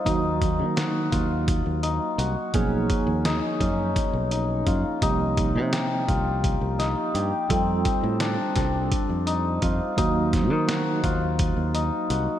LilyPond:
<<
  \new Staff \with { instrumentName = "Hammered dulcimer" } { \time 7/8 \key ees \lydian \tempo 4 = 85 ees'4 ges'8 f'4 ees'8 ges'8 | des'4 dis'8 des'4 dis'8 f'8 | ees'4 g'8 f'4 ees'8 g'8 | c'4 d'8 c'4 ees'8 f'8 |
ees'4 ges'8 f'4 ees'8 ges'8 | }
  \new Staff \with { instrumentName = "Tine electric piano" } { \time 7/8 \key ees \lydian <ges bes ees' ges'>2.~ <ges bes ees' ges'>8 | <f bes dis' aes'>2.~ <f bes dis' aes'>8 | <f bes ees' g'>2.~ <f bes ees' g'>8 | <g c' f' a'>2.~ <g c' f' a'>8 |
<ges bes ees' ges'>2.~ <ges bes ees' ges'>8 | }
  \new Staff \with { instrumentName = "Fingered electric bass" } { \clef bass \time 7/8 \key ees \lydian ees,8. ees8. ees,8. ees,8 r16 c,16 r16 | b,,8 r16 dis,8 r16 fis,8 r16 b,,8. fis,16 r16 | c,8. c8. c,8. c,8 r16 g,16 r16 | f,8 r16 a,8 r16 c,8 r16 f,8. f,16 r16 |
ees,8. ees8. ees,8. ees,8 r16 c,16 r16 | }
  \new DrumStaff \with { instrumentName = "Drums" } \drummode { \time 7/8 <hh bd>8 <hh bd>8 <hh sn>8 <hh bd>8 <hh bd>8 hh8 hh8 | <hh bd>8 <hh bd>8 <hh sn>8 <hh bd>8 <hh bd>8 hh8 <hh bd>8 | <hh bd>8 <hh bd>8 <hh sn>8 <hh bd>8 <hh bd>8 <hh sn>8 hh8 | <hh bd>8 <hh bd>8 <hh sn>8 <hh bd sn>8 <hh bd>8 hh8 <hh bd>8 |
<hh bd>8 <hh bd sn>8 <hh sn>8 <hh bd>8 <hh bd>8 hh8 hh8 | }
>>